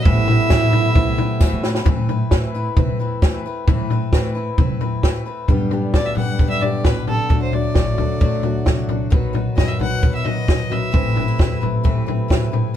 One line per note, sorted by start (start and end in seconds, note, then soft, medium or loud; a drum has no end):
0.03 0.41 A1 loud
0.03 0.28 A2 medium
0.03 1.84 C3 medium
0.03 0.28 E3 medium
0.03 1.84 A3 medium
0.03 0.28 A3 medium
0.03 1.84 B3 medium
0.03 0.28 C4 medium
0.03 1.59 E4 loud
0.03 1.84 E4 medium
0.03 0.27 E4 medium
0.03 0.27 B4 medium
0.03 1.62 E5 loud
0.03 kick loud
0.03 floor tom medium
0.28 0.50 A3 soft
0.28 0.50 C4 soft
0.28 0.50 E4 medium
0.28 0.50 B4 medium
0.28 floor tom medium
0.50 0.86 A1 loud
0.50 0.73 A2 medium
0.50 0.73 E3 medium
0.50 0.73 A3 medium
0.50 0.73 C4 medium
0.50 0.72 E4 medium
0.50 0.71 B4 medium
0.50 kick loud
0.50 snare loud
0.50 floor tom medium
0.50 tambourine loud
0.72 0.95 A3 medium
0.72 0.95 C4 medium
0.72 0.96 E4 medium
0.72 0.95 B4 medium
0.72 floor tom medium
0.95 1.13 C2 medium
0.95 1.18 A3 medium
0.95 1.18 C4 medium
0.95 1.17 E4 medium
0.95 1.17 B4 medium
0.95 kick loud
0.95 floor tom medium
1.18 1.41 A3 medium
1.18 1.40 C4 medium
1.18 1.41 E4 medium
1.18 1.41 B4 medium
1.18 floor tom medium
1.40 1.50 E2 medium
1.40 1.64 A2 medium
1.40 1.64 E3 medium
1.40 1.64 A3 medium
1.40 1.64 C4 medium
1.40 1.64 E4 medium
1.40 1.62 B4 medium
1.40 kick loud
1.40 snare medium
1.40 tambourine loud
1.52 1.79 A2 medium
1.64 1.86 A3 soft
1.64 1.86 C4 soft
1.64 1.87 E4 medium
1.64 1.86 B4 medium
1.64 snare medium
1.75 snare medium
1.85 2.21 A2 medium
1.85 2.09 A2 medium
1.85 2.09 E3 medium
1.85 2.09 A3 medium
1.85 2.09 C4 medium
1.85 2.08 E4 medium
1.85 2.08 B4 medium
1.85 kick loud
1.85 floor tom loud
2.09 2.31 A3 soft
2.09 2.31 C4 soft
2.09 2.32 E4 medium
2.09 2.31 B4 medium
2.09 floor tom medium
2.31 2.67 A2 medium
2.31 2.54 A2 medium
2.31 2.54 E3 medium
2.31 2.54 A3 medium
2.31 2.54 C4 medium
2.31 2.54 E4 medium
2.31 2.53 B4 medium
2.31 kick medium
2.31 snare medium
2.54 2.76 A3 soft
2.54 2.77 C4 soft
2.54 2.77 E4 soft
2.54 2.77 B4 medium
2.77 2.86 C3 medium
2.77 3.18 E3 medium
2.77 3.00 A3 medium
2.77 3.00 C4 medium
2.77 2.99 E4 medium
2.77 2.98 B4 medium
2.77 kick medium
2.77 floor tom medium
2.87 3.14 E2 medium
2.99 3.22 A3 soft
2.99 3.22 C4 soft
2.99 3.22 E4 medium
2.99 3.22 B4 medium
3.22 3.40 E2 medium
3.22 3.45 A2 medium
3.22 3.45 E3 medium
3.22 3.45 A3 medium
3.22 3.45 C4 medium
3.22 3.45 E4 medium
3.22 3.44 B4 medium
3.22 kick loud
3.22 snare medium
3.45 3.67 A3 soft
3.45 3.68 C4 soft
3.45 3.68 E4 soft
3.45 3.68 B4 medium
3.67 4.03 A2 medium
3.67 3.90 A2 medium
3.67 3.91 E3 medium
3.67 3.91 A3 medium
3.67 3.91 C4 medium
3.67 3.90 E4 medium
3.67 3.90 B4 medium
3.67 kick loud
3.67 floor tom loud
3.90 4.13 A3 soft
3.90 4.13 C4 medium
3.90 4.13 E4 medium
3.90 4.13 B4 medium
3.90 floor tom medium
4.12 4.48 A2 medium
4.12 4.36 A2 medium
4.12 4.36 E3 medium
4.12 4.36 A3 medium
4.12 4.35 C4 medium
4.12 4.35 E4 medium
4.12 4.34 B4 medium
4.12 kick medium
4.12 snare medium
4.35 4.57 A3 soft
4.35 4.58 C4 soft
4.35 4.58 E4 soft
4.35 4.58 B4 medium
4.58 4.67 C3 medium
4.58 4.99 E3 medium
4.58 4.81 A3 medium
4.58 4.81 C4 medium
4.58 4.80 E4 medium
4.58 4.79 B4 medium
4.58 kick loud
4.58 floor tom loud
4.69 4.96 E2 medium
4.81 5.03 A3 soft
4.81 5.03 C4 soft
4.81 5.04 E4 soft
4.81 5.03 B4 medium
4.81 floor tom medium
5.03 5.21 A2 medium
5.03 5.26 A2 medium
5.03 5.26 E3 medium
5.03 5.26 A3 medium
5.03 5.25 C4 medium
5.03 5.25 E4 medium
5.03 5.24 B4 medium
5.03 kick medium
5.03 snare medium
5.25 5.49 A3 soft
5.25 5.49 C4 soft
5.25 5.49 E4 soft
5.25 5.48 B4 soft
5.48 5.84 G2 medium
5.48 5.71 G2 medium
5.48 9.08 D3 medium
5.48 5.72 D3 medium
5.48 7.28 G3 medium
5.48 5.72 G3 medium
5.48 7.28 B3 medium
5.48 5.72 B3 medium
5.48 5.71 D4 medium
5.48 7.28 G4 medium
5.48 5.71 G4 medium
5.48 6.17 B4 medium
5.48 kick medium
5.48 floor tom medium
5.71 5.93 G3 soft
5.71 5.94 B3 soft
5.71 5.95 D4 soft
5.71 5.94 G4 medium
5.71 floor tom medium
5.94 6.12 D2 medium
5.94 6.17 G3 soft
5.94 6.17 B3 medium
5.94 6.17 D4 soft
5.94 6.16 G4 medium
5.94 6.07 D5 medium
5.94 kick medium
5.94 snare medium
5.94 floor tom medium
6.06 6.16 E5 medium
6.16 6.34 G2 medium
6.16 6.39 G3 soft
6.16 6.40 B3 soft
6.16 6.40 D4 soft
6.16 6.40 G4 soft
6.16 7.28 B4 medium
6.16 6.48 F#5 medium
6.16 floor tom medium
6.39 6.75 G2 medium
6.39 6.62 G2 medium
6.39 6.62 D3 medium
6.39 6.63 G3 medium
6.39 6.63 B3 medium
6.39 6.62 D4 medium
6.39 6.61 G4 medium
6.39 kick medium
6.39 floor tom medium
6.50 6.63 E5 medium
6.61 6.83 G3 soft
6.61 6.84 B3 soft
6.61 6.85 D4 soft
6.61 6.85 G4 soft
6.61 6.86 D5 medium
6.61 floor tom medium
6.84 7.20 A1 medium
6.84 7.07 B2 medium
6.84 7.07 G3 soft
6.84 7.07 B3 medium
6.84 7.07 D4 soft
6.84 7.06 G4 medium
6.84 7.07 B4 medium
6.84 kick medium
6.84 snare medium
6.84 floor tom medium
7.07 7.31 C3 medium
7.07 7.29 G3 soft
7.07 7.30 B3 soft
7.07 7.29 D4 soft
7.07 7.30 G4 soft
7.07 7.39 A4 medium
7.07 floor tom medium
7.30 7.66 D2 medium
7.30 7.53 D3 medium
7.30 7.53 F#3 medium
7.30 10.90 F#3 medium
7.30 9.10 A3 medium
7.30 7.53 A3 medium
7.30 7.52 D4 medium
7.30 10.90 F#4 medium
7.30 7.52 F#4 medium
7.30 kick medium
7.30 floor tom medium
7.42 7.55 C5 medium
7.53 7.74 A3 soft
7.53 7.75 D4 soft
7.53 7.75 F#4 soft
7.53 8.89 D5 medium
7.53 floor tom medium
7.75 7.93 A1 medium
7.75 7.98 F#3 soft
7.75 7.98 A3 soft
7.75 7.97 D4 soft
7.75 7.96 F#4 medium
7.75 kick medium
7.75 snare medium
7.75 floor tom medium
7.98 8.16 D2 medium
7.98 8.20 A3 soft
7.98 8.21 D4 soft
7.98 8.21 F#4 soft
7.98 8.66 A4 medium
7.98 floor tom medium
8.20 8.57 D2 medium
8.20 8.62 A2 medium
8.20 8.43 D3 medium
8.20 8.44 F#3 medium
8.20 8.44 A3 medium
8.20 8.43 D4 medium
8.20 8.42 F#4 medium
8.20 kick medium
8.20 floor tom medium
8.43 8.65 A3 soft
8.43 8.66 D4 soft
8.43 8.66 F#4 soft
8.43 floor tom medium
8.65 9.02 C2 medium
8.65 8.89 F#3 medium
8.65 8.89 A3 medium
8.65 8.89 D4 medium
8.65 8.87 F#4 medium
8.65 9.09 A4 medium
8.65 kick medium
8.65 snare medium
8.65 floor tom medium
8.89 9.11 A3 soft
8.89 9.11 D4 soft
8.89 9.10 F#4 medium
8.89 floor tom medium
9.10 9.48 B1 medium
9.10 9.34 B2 medium
9.10 10.92 D#3 medium
9.10 9.34 F#3 medium
9.10 9.34 B3 medium
9.10 9.32 D#4 medium
9.10 9.32 F#4 medium
9.10 12.76 B4 medium
9.10 9.36 B4 medium
9.10 kick loud
9.10 floor tom medium
9.33 9.55 B3 soft
9.33 9.56 D#4 medium
9.33 9.56 F#4 medium
9.33 9.81 B4 medium
9.33 floor tom medium
9.55 9.75 F#2 medium
9.55 9.98 D#3 medium
9.55 9.79 F#3 medium
9.55 9.79 B3 medium
9.55 9.78 D#4 medium
9.55 9.77 F#4 medium
9.55 9.69 D#5 medium
9.55 kick medium
9.55 snare medium
9.55 floor tom medium
9.68 9.80 E5 medium
9.78 9.97 B1 medium
9.78 10.01 B3 soft
9.78 10.01 D#4 soft
9.78 10.01 F#4 soft
9.78 10.27 B4 medium
9.78 10.12 F#5 medium
9.78 floor tom medium
10.01 10.39 B1 medium
10.01 10.25 B2 medium
10.01 10.25 F#3 medium
10.01 10.25 B3 medium
10.01 10.24 D#4 medium
10.01 10.23 F#4 medium
10.01 kick medium
10.01 floor tom medium
10.15 10.26 E5 medium
10.24 10.46 B3 soft
10.24 10.47 D#4 soft
10.24 10.48 F#4 soft
10.24 10.49 B4 medium
10.24 10.73 D#5 medium
10.24 floor tom medium
10.47 10.84 B1 medium
10.47 10.89 D#3 medium
10.47 10.71 F#3 soft
10.47 10.70 B3 medium
10.47 10.69 D#4 medium
10.47 10.68 F#4 medium
10.47 kick loud
10.47 snare medium
10.47 floor tom medium
10.70 10.92 B3 soft
10.70 10.92 D#4 soft
10.70 10.93 F#4 soft
10.70 11.62 E5 medium
10.70 floor tom medium
10.92 11.29 A1 medium
10.92 11.15 A2 medium
10.92 12.73 C3 medium
10.92 11.16 E3 medium
10.92 11.16 A3 medium
10.92 12.74 A3 medium
10.92 11.15 C4 medium
10.92 11.14 E4 medium
10.92 12.73 E4 medium
10.92 11.13 B4 medium
10.92 kick loud
10.92 floor tom medium
11.15 11.37 A3 soft
11.15 11.38 C4 soft
11.15 11.28 D4 medium
11.15 11.38 E4 soft
11.15 11.38 B4 soft
11.15 floor tom medium
11.28 12.06 E4 soft
11.38 11.57 E2 medium
11.38 11.61 A3 medium
11.38 11.61 C4 medium
11.38 11.61 E4 medium
11.38 11.59 B4 medium
11.38 kick medium
11.38 snare medium
11.38 floor tom medium
11.61 11.79 A1 medium
11.61 11.83 A3 soft
11.61 11.83 C4 soft
11.61 11.84 E4 soft
11.61 11.84 B4 soft
11.61 floor tom medium
11.83 12.20 A1 medium
11.83 12.07 A2 medium
11.83 12.07 E3 medium
11.83 12.07 A3 medium
11.83 12.06 C4 medium
11.83 12.05 E4 medium
11.83 12.05 B4 medium
11.83 kick medium
11.83 floor tom medium
12.06 12.27 A3 soft
12.06 12.28 C4 soft
12.06 12.29 E4 soft
12.06 12.29 B4 medium
12.06 floor tom medium
12.28 12.66 A1 medium
12.28 12.52 B2 medium
12.28 12.52 A3 medium
12.28 12.52 C4 medium
12.28 12.51 E4 medium
12.28 12.50 B4 medium
12.28 kick medium
12.28 snare medium
12.28 floor tom medium
12.52 12.75 A2 medium
12.52 12.74 A3 soft
12.52 12.74 C4 soft
12.52 12.75 E4 soft
12.52 12.75 B4 soft
12.52 floor tom medium